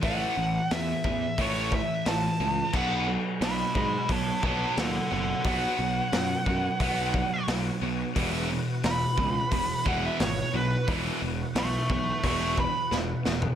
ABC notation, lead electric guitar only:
X:1
M:4/4
L:1/16
Q:1/4=88
K:B
V:1 name="Lead electric guitar"
f4 e4 c2 e2 =a4 | f2 z2 [db]2 [db]2 [c=a]2 [ca]2 [=Af]2 [Af]2 | f12 z4 | z4 b6 f e c2 B2 |
z4 [ec']2 [ec']2 [ec']2 b2 z4 |]